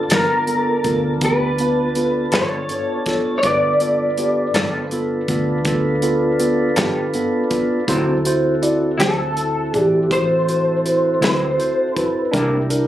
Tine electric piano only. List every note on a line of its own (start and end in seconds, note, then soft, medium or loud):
0.11 0.39 B3 soft
0.11 0.39 F4 soft
0.11 0.40 B4 soft
0.47 0.75 B3 medium
0.47 0.76 F4 soft
0.47 0.76 A4 medium
0.84 1.12 B3 soft
0.84 1.13 F4 soft
0.84 1.13 A4 medium
1.22 1.50 B3 medium
1.22 1.50 F4 soft
1.22 1.50 G4 medium
1.60 1.87 B3 medium
1.60 1.88 F4 soft
1.60 1.88 B4 medium
1.96 2.24 B3 soft
1.96 2.24 F4 soft
1.96 2.25 A4 soft
2.34 2.61 B3 medium
2.34 2.62 F4 soft
2.34 2.62 A4 medium
2.70 2.98 B3 soft
2.70 2.98 F4 soft
2.70 2.99 A4 medium
3.06 3.35 B3 soft
3.06 3.35 F4 soft
3.06 3.35 A4 medium
3.45 3.72 B3 medium
3.45 3.72 F4 medium
3.45 3.72 B4 medium
3.81 4.09 B3 soft
3.81 4.09 F4 soft
3.81 4.09 A4 medium
4.18 4.46 B3 soft
4.18 4.46 F4 soft
4.18 4.47 G4 medium
4.54 4.82 B3 medium
4.54 4.83 F4 soft
4.54 4.83 A4 medium
4.92 5.20 B3 medium
4.92 5.20 F4 medium
4.92 5.21 A4 medium
5.29 5.57 B3 medium
5.29 5.57 F4 soft
5.29 5.57 A4 medium
5.66 5.94 B3 medium
5.66 5.94 F4 medium
5.66 5.95 A4 medium
6.02 6.31 B3 medium
6.02 6.31 F4 medium
6.02 6.31 A4 medium
6.40 6.68 B3 medium
6.40 6.68 F4 medium
6.40 6.68 A4 medium
6.77 7.05 B3 medium
6.77 7.05 F4 soft
6.77 7.05 G4 medium
7.15 7.42 B3 medium
7.15 7.42 F4 soft
7.15 7.43 A4 medium
7.50 7.78 B3 medium
7.50 7.79 F4 medium
7.50 7.79 A4 medium
7.87 8.16 E4 medium
7.87 8.16 F#4 medium
7.87 8.17 C5 medium
8.26 8.53 E4 medium
8.26 8.54 F#4 medium
8.26 8.54 C5 medium
8.62 8.90 E4 medium
8.62 8.90 F#4 soft
8.62 8.91 D5 medium
8.99 9.27 E4 medium
8.99 9.28 F#4 soft
8.99 9.28 C5 medium
9.36 9.64 E4 soft
9.36 9.65 F#4 soft
9.36 9.65 A4 medium
9.73 10.01 E4 soft
9.73 10.02 F#4 soft
9.73 10.02 D5 medium
10.09 10.38 E4 soft
10.09 10.38 F#4 soft
10.09 10.39 C5 medium
10.47 10.75 E4 soft
10.47 10.76 F#4 soft
10.47 10.77 C5 medium
10.85 11.13 E4 soft
10.85 11.13 F#4 soft
10.85 11.13 C5 soft
11.22 11.50 E4 soft
11.22 11.50 F#4 soft
11.22 11.50 B4 medium
11.58 11.86 E4 soft
11.58 11.87 F#4 soft
11.58 11.87 C5 medium
11.95 12.24 E4 medium
11.95 12.24 F#4 soft
11.95 12.24 C5 medium
12.31 12.60 D4 medium
12.31 12.61 E4 medium
12.31 12.61 A#4 medium
12.70 12.87 D4 medium
12.70 12.87 E4 medium
12.70 12.87 A#4 medium